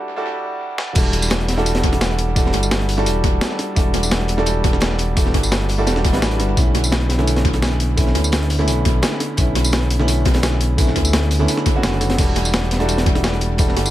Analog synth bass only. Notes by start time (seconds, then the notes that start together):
0.96 E1
2.54 G1
3.06 E1
3.76 E1
5.34 G1
5.87 E1
6.14 A1
6.40 G1
6.57 B1
8.15 D2
8.68 B1
9.38 B1
10.96 D2
11.84 F#1
12.19 E1
13.77 G1